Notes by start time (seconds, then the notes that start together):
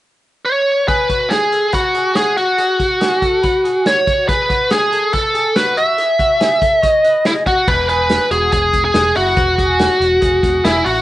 0.45 C#5
0.88 G#4 B4, kick, closed hi-hat
1.09 F#4, kick, closed hi-hat
1.30 G#4, snare, closed hi-hat
1.52 A4, closed hi-hat
1.72 F#4 B4, kick, closed hi-hat
1.95 G#4, closed hi-hat
2.15 F#4 G#4, snare, closed hi-hat
2.37 F#4, closed hi-hat
2.58 G#4, closed hi-hat
2.80 F#4, kick, closed hi-hat
3.00 G#4, snare, closed hi-hat
3.22 A4, kick, closed hi-hat
3.43 B4, kick, closed hi-hat
3.64 G#4, closed hi-hat
3.86 F#4 C#5, snare, closed hi-hat
4.07 F#4, kick, closed hi-hat
4.28 G#4 B4, kick, closed hi-hat
4.49 F#4, kick, closed hi-hat
4.70 G#4, snare, closed hi-hat
4.92 A4, closed hi-hat
5.13 A4 B4, kick, closed hi-hat
5.34 G#4, closed hi-hat
5.55 F#4 B4, snare, closed hi-hat
5.76 F#4 E5, closed hi-hat
5.98 G#4, closed hi-hat
6.19 F#4, kick, closed hi-hat
6.40 G#4, snare, closed hi-hat
6.61 A4, kick, closed hi-hat
6.82 C#5 D#5, kick, closed hi-hat
7.04 B4, closed hi-hat
7.25 E4 G#4, snare, closed hi-hat
7.46 F#4, kick, closed hi-hat
7.67 E1 B4, kick, crash
7.88 G#4 B4, closed hi-hat
8.09 snare, closed hi-hat
8.31 E1 F#4 G#4, closed hi-hat
8.52 E1 G#4, kick, closed hi-hat
8.73 E1, kick, closed hi-hat
8.85 G#4
8.94 E1 G#4, snare, closed hi-hat
9.15 F#1 E4 F#4, open hi-hat
9.37 E1 B4, kick, closed hi-hat
9.58 G#4, kick, closed hi-hat
9.79 snare, closed hi-hat
10.00 E1 F#4, closed hi-hat
10.21 E1 G#4, kick, closed hi-hat
10.43 E1, kick, snare, closed hi-hat
10.64 E1 E4 G#4, snare, closed hi-hat
10.84 A1 E4 F#4, open hi-hat